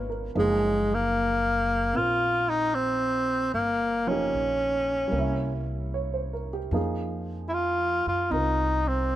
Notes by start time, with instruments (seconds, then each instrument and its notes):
Already playing: upright bass G#1, grand piano B2 F3 G#3 D#4 F4 G#4 A#4 B4 C#5 D#5
0.10 grand piano A#4
0.35 upright bass F#1, grand piano F3 A#3 D#4 G#4, tenor saxophone G#3
0.94 tenor saxophone A#3
1.93 upright bass A#1, grand piano C4 F4 A#4, tenor saxophone F4
2.49 tenor saxophone D#4
2.75 tenor saxophone C4
3.54 upright bass G1, tenor saxophone A#3
4.07 grand piano F3 A#3 D#4, tenor saxophone C#4
4.11 grand piano G4
4.33 upright bass A#1
5.08 upright bass C2, grand piano G3 A#3
5.15 grand piano C#4 E4
5.94 grand piano C#5
6.14 grand piano C5
6.33 grand piano A#4
6.53 grand piano G4
6.71 upright bass F2, grand piano F3 A#3 D#4 G#4
7.49 tenor saxophone E4
7.54 tenor saxophone F4
8.06 upright bass F#2, tenor saxophone F4
8.30 upright bass C2, grand piano C4 F4 A#4, tenor saxophone D#4
8.88 tenor saxophone C4